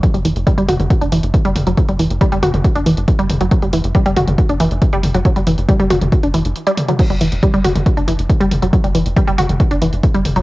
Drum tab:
CC |----------------|----------------|----------------|----------------|
HH |xxoxxxoxxxoxxxox|xxoxxxoxxxoxxxox|xxoxxxoxxxoxxxox|xxoxxxoxxxoxxxox|
T2 |------oo------o-|------oo------o-|------oo------o-|----o-oo------oo|
BD |o---o---o---o---|o---o---o---o---|o---o---o---o---|o---o---o-------|

CC |x---------------|----------------|
HH |xxoxxxoxxxoxxxox|xxoxxxoxxxoxxxox|
T2 |------oo------o-|------oo------o-|
BD |o---o---o---o---|o---o---o---o---|